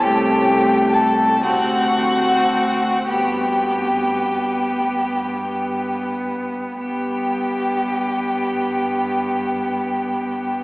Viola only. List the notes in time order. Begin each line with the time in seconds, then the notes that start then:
0.04 A3
0.50 A3
1.44 C4
1.97 C4
3.08 B3
3.69 B3
5.48 B3
6.80 B3